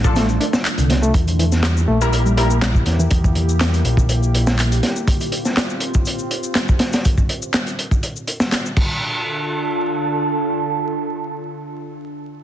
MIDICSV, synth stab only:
0, 0, Header, 1, 2, 480
1, 0, Start_track
1, 0, Key_signature, -1, "minor"
1, 0, Tempo, 491803
1, 1118, Time_signature, 4, 2, 24, 8
1, 12136, End_track
2, 0, Start_track
2, 0, Title_t, "Synth stab"
2, 0, Program_c, 0, 62
2, 40, Note_on_c, 0, 53, 88
2, 40, Note_on_c, 0, 62, 82
2, 40, Note_on_c, 0, 69, 94
2, 132, Note_off_c, 0, 53, 0
2, 132, Note_off_c, 0, 62, 0
2, 132, Note_off_c, 0, 69, 0
2, 1964, Note_on_c, 0, 55, 97
2, 1964, Note_on_c, 0, 64, 91
2, 1964, Note_on_c, 0, 70, 109
2, 2021, Note_off_c, 0, 55, 0
2, 2021, Note_off_c, 0, 64, 0
2, 2021, Note_off_c, 0, 70, 0
2, 2317, Note_on_c, 0, 55, 86
2, 2318, Note_on_c, 0, 70, 97
2, 2319, Note_on_c, 0, 64, 80
2, 2381, Note_off_c, 0, 55, 0
2, 2381, Note_off_c, 0, 64, 0
2, 2381, Note_off_c, 0, 70, 0
2, 12136, End_track
0, 0, End_of_file